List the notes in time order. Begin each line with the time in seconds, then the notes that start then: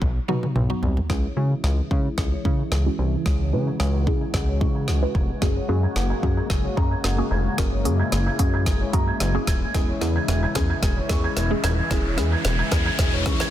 Already playing: F#3 B3 D#4 F#4
0.02 B1, kick, high tom
0.28 B2 F#3 B3 D#4 F#4, mid tom
0.43 mid tom
0.56 B1, mid tom
0.70 F#3 B3 D#4 F#4
0.83 C2, floor tom
0.97 floor tom
1.10 C#2 C#3 E3 G#3 C#4 E4 G#4, kick, snare
1.24 C#5
1.37 C#3 G#3 C#4 E4 F#4
1.51 G#6
1.64 C#2, snare
1.78 G#6
1.91 C#3 G#3 C#4 E4 G#4, kick
2.05 G#6
2.18 C#2 G#4, kick, snare
2.32 C#5
2.45 C#3 G#3 C#4 E4 G#4 C#6, kick
2.59 G#6
2.72 C#2, snare
2.86 G#3 C#4 E4 F#4
2.99 C2 G#6
3.26 C#2 G#3 C#4 E4 F#4 G#4, kick, snare
3.40 C#5
3.53 C#3 G#3 C#4 E4 B4
3.67 G#6
3.80 C#2, snare
3.94 G#6
4.07 C#3 G#3 C#4 E4 G#4, kick
4.21 G#6
4.34 C#2 G#4, kick, snare
4.48 C#5
4.61 C#3 G#3 C#4 E4 G#4 C#6, kick
4.75 G#6
4.88 C#2, snare
5.02 G#3 C#4 E4 B4
5.15 F1 G#6, kick
5.42 F#1 C#3 A#3 C#4 F#4 G#4, kick, snare
5.56 C#5
5.69 F#2 A#3 C#4 F#4 G#4
5.83 G#6
5.96 F#1, snare
6.10 G#6
6.23 F#2 A#3 C#4 F#4 G#4, kick
6.37 G#6
6.50 F#1 G#4, kick, snare
6.64 C#5
6.77 F#2 A#3 C#4 F#4 G#4 A#5, kick
6.91 G#6
7.04 F#1, snare
7.18 A#3 C#4 F#4 G#4
7.31 F1 G#6
7.58 F#1 A#3 C#4 E4 F#4 G#4 A#4, kick, snare, closed hi-hat
7.72 C#5
7.85 F#2 A#3 C#4 F#4 G#4, closed hi-hat
8.00 G#6
8.12 F#1, snare, closed hi-hat
8.27 G#6
8.39 F#2 A#3 C#4 F#4 G#4, kick, closed hi-hat
8.54 G#6
8.66 F#1 G#4, kick, snare, closed hi-hat
8.80 C#5
8.93 F#2 A#3 C#4 F#4 G#4 A#5, kick, closed hi-hat
9.08 G#6
9.20 F#1, snare, closed hi-hat
9.34 A#3 C#4 F#4 G#4
9.47 D#1 G#6, kick, snare, closed hi-hat
9.74 E1 E3 G#3 C#4 E4 G#4, kick, snare, closed hi-hat, riser
9.89 C#5
10.01 E2 G#3 C#4 E4 G#4, snare, closed hi-hat
10.16 G#6
10.28 E1, snare, closed hi-hat
10.43 G#6
10.55 E2 G#3 C#4 E4 G#4, kick, snare, closed hi-hat
10.70 G#6
10.83 E1 G#4, kick, snare, closed hi-hat
10.97 C#5
11.09 E2 G#3 C#4 E4 G#4 C#6, kick, snare, closed hi-hat
11.24 G#6
11.37 E1, snare, closed hi-hat
11.51 G#3 C#4 E4 G#4
11.64 D#1 G#6, snare, closed hi-hat
11.90 E1 G#3 C#4 E4 G#4, kick, snare, closed hi-hat
12.05 C#5
12.17 E2 G#3 C#4 E4 G#4, snare, closed hi-hat
12.32 G#6
12.45 E1, snare, closed hi-hat
12.59 G#6
12.71 E2 G#3 C#4 E4 G#4, kick, snare, closed hi-hat
12.86 G#6
12.99 E1 G#4, kick, snare, closed hi-hat
13.13 C#5
13.26 E2 G#3 C#4 E4 G#4 C#6, kick, snare, closed hi-hat
13.40 G#6, snare